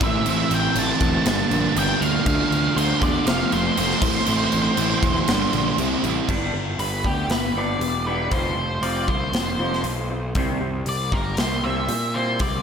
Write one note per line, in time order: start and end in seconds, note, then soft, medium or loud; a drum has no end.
0.00 0.17 A1 medium
0.00 0.24 A2 medium
0.00 0.25 E3 medium
0.00 0.26 A3 medium
0.00 0.27 C4 medium
0.00 0.28 E4 loud
0.00 0.28 E5 loud
0.00 kick loud
0.00 crash medium
0.25 0.42 A1 medium
0.25 0.74 A2 loud
0.25 0.76 E3 medium
0.25 0.76 A3 loud
0.25 0.77 C4 loud
0.25 0.78 E4 loud
0.25 crash medium
0.30 0.54 E5 loud
0.51 0.67 A1 medium
0.51 0.78 G5 loud
0.51 crash medium
0.75 0.91 A1 loud
0.75 1.24 A2 medium
0.75 1.25 E3 loud
0.75 1.25 A3 loud
0.75 1.26 C4 loud
0.75 1.26 E4 loud
0.75 1.78 A5 medium
0.75 crash medium
1.00 1.17 E1 loud
1.00 kick medium
1.00 crash medium
1.26 1.42 G1 loud
1.26 1.76 G2 loud
1.26 1.76 D3 loud
1.26 1.54 G3 loud
1.26 1.53 A#3 loud
1.26 1.51 D4 loud
1.26 snare loud
1.26 crash medium
1.51 1.67 A#1 medium
1.51 1.77 G3 medium
1.51 1.78 A#3 medium
1.51 1.78 D4 medium
1.51 crash medium
1.75 1.92 G1 loud
1.75 2.25 G2 loud
1.75 2.24 D3 medium
1.75 2.02 G3 medium
1.75 2.01 A#3 medium
1.75 2.03 G5 loud
1.75 crash medium
1.79 2.00 D4 medium
2.01 2.17 D2 medium
2.01 2.26 G3 medium
2.01 2.25 A#3 medium
2.01 2.25 D4 medium
2.01 2.79 F5 loud
2.01 crash medium
2.25 2.42 D2 loud
2.25 2.74 D3 loud
2.25 2.76 A3 loud
2.25 2.76 D4 loud
2.25 2.77 F4 loud
2.25 kick loud
2.25 crash medium
2.51 2.67 D2 medium
2.51 crash medium
2.76 2.92 D2 medium
2.76 3.25 D3 medium
2.76 3.25 A3 medium
2.76 3.26 D4 loud
2.76 3.26 F4 loud
2.76 3.03 C5 medium
2.76 crash medium
3.01 3.17 E2 medium
3.01 3.27 D5 medium
3.01 kick medium
3.01 crash medium
3.26 3.43 F1 loud
3.26 3.75 F3 loud
3.26 3.53 A3 loud
3.26 3.52 C4 medium
3.26 3.50 F4 loud
3.26 3.53 F5 loud
3.26 snare loud
3.26 crash medium
3.51 3.69 F1 medium
3.51 3.77 A3 medium
3.51 3.77 C4 medium
3.51 3.79 F4 medium
3.51 3.78 C5 medium
3.51 crash medium
3.76 3.94 F1 loud
3.76 4.00 F3 medium
3.76 4.01 A3 medium
3.76 4.00 C4 medium
3.76 4.00 F4 medium
3.76 5.76 C5 medium
3.76 crash medium
3.91 snare soft
4.01 4.18 A1 medium
4.01 4.24 A2 medium
4.01 4.25 E3 medium
4.01 4.26 A3 medium
4.01 4.27 C4 medium
4.01 4.28 E4 medium
4.01 kick loud
4.01 crash loud
4.25 4.43 A1 medium
4.25 4.74 A2 loud
4.25 4.75 E3 loud
4.25 4.76 A3 loud
4.25 4.76 C4 loud
4.25 4.77 E4 loud
4.25 crash medium
4.52 4.69 A1 medium
4.52 crash medium
4.75 4.94 A1 medium
4.75 5.25 A2 medium
4.75 5.26 E3 loud
4.75 5.26 A3 loud
4.75 5.27 C4 loud
4.75 5.27 E4 loud
4.75 crash medium
5.03 5.19 E1 medium
5.03 kick medium
5.03 crash medium
5.26 5.45 G1 loud
5.26 5.76 G2 medium
5.26 5.76 D3 medium
5.26 5.53 G3 medium
5.26 5.51 A#3 loud
5.26 5.50 D4 loud
5.26 snare loud
5.26 crash medium
5.51 5.69 A#1 medium
5.51 5.77 G3 medium
5.51 5.76 A#3 medium
5.51 5.76 D4 medium
5.51 crash medium
5.77 5.94 C2 medium
5.77 6.27 C3 medium
5.77 6.05 G3 loud
5.77 6.04 C4 loud
5.77 6.02 E4 loud
5.77 crash medium
6.03 6.20 A1 medium
6.03 6.29 G3 medium
6.03 6.28 C4 medium
6.03 6.28 E4 medium
6.03 crash medium
6.28 6.53 G1 medium
6.28 6.52 G3 medium
6.28 6.53 B3 medium
6.28 6.53 D4 medium
6.28 kick loud
6.28 crash medium
6.54 6.78 G1 medium
6.54 6.77 G3 medium
6.54 6.77 B3 medium
6.79 7.03 G1 medium
6.79 7.02 G3 medium
6.79 7.02 B3 medium
6.79 7.06 B4 medium
6.79 open hi-hat soft
7.04 7.28 D2 medium
7.04 7.28 G3 medium
7.04 7.28 B3 medium
7.04 7.32 G4 medium
7.04 kick medium
7.29 7.53 G1 medium
7.29 7.53 G3 medium
7.29 7.53 B3 medium
7.29 7.57 B4 medium
7.29 snare loud
7.29 open hi-hat medium
7.54 7.79 G1 medium
7.54 7.80 G3 medium
7.54 7.80 B3 medium
7.54 7.80 D4 medium
7.58 8.05 D5 medium
7.79 8.28 E1 medium
7.79 8.05 G3 medium
7.79 8.05 B3 medium
7.79 open hi-hat medium
8.06 8.31 G3 medium
8.06 8.31 B3 medium
8.06 8.32 D4 medium
8.06 8.33 B4 medium
8.31 8.55 F1 medium
8.31 8.55 F3 medium
8.31 8.56 C4 medium
8.31 8.57 F4 medium
8.31 8.85 C5 medium
8.31 kick medium
8.31 open hi-hat soft
8.56 8.81 F1 medium
8.56 8.80 F3 medium
8.56 8.80 C4 medium
8.81 9.06 F1 medium
8.81 9.07 F3 medium
8.81 9.07 C4 medium
8.81 9.07 F4 medium
8.81 9.09 D5 medium
8.81 open hi-hat medium
9.08 9.32 C2 medium
9.08 9.31 F3 medium
9.08 9.31 C4 medium
9.08 9.81 C5 medium
9.08 kick medium
9.32 9.57 F1 medium
9.32 9.57 F3 medium
9.32 9.57 C4 medium
9.32 snare loud
9.32 open hi-hat medium
9.58 9.83 F1 medium
9.58 9.83 F3 medium
9.58 9.84 C4 medium
9.58 9.84 F4 medium
9.73 snare soft
9.84 10.32 B1 medium
9.84 10.08 F3 medium
9.84 10.08 C4 medium
9.84 open hi-hat medium
10.10 10.34 F3 medium
10.10 10.34 C4 medium
10.35 10.60 C2 medium
10.35 10.60 C3 medium
10.35 10.60 G3 medium
10.35 10.61 C4 loud
10.35 kick medium
10.35 open hi-hat soft
10.61 10.85 C2 medium
10.61 10.84 C3 medium
10.61 10.84 G3 medium
10.86 11.11 C2 medium
10.86 11.10 C3 medium
10.86 11.10 G3 medium
10.86 11.14 D5 medium
10.86 open hi-hat soft
11.12 11.36 G1 medium
11.12 11.36 C3 medium
11.12 11.36 G3 medium
11.12 11.39 A#4 medium
11.12 kick medium
11.37 11.62 C2 medium
11.37 11.61 C3 medium
11.37 11.61 G3 medium
11.37 11.65 C5 medium
11.37 snare medium
11.37 open hi-hat medium
11.63 11.87 C2 medium
11.63 11.88 C3 medium
11.63 11.88 G3 medium
11.63 11.89 C4 medium
11.63 12.16 E5 medium
11.88 12.37 A#2 medium
11.88 12.12 C3 medium
11.88 12.13 G3 medium
11.88 open hi-hat medium
12.14 12.39 C3 medium
12.14 12.39 G3 medium
12.14 12.39 C4 medium
12.14 12.41 C5 medium
12.39 12.62 C2 medium
12.39 12.62 C3 medium
12.39 12.62 G3 medium
12.39 12.62 D5 medium
12.39 kick medium
12.39 open hi-hat medium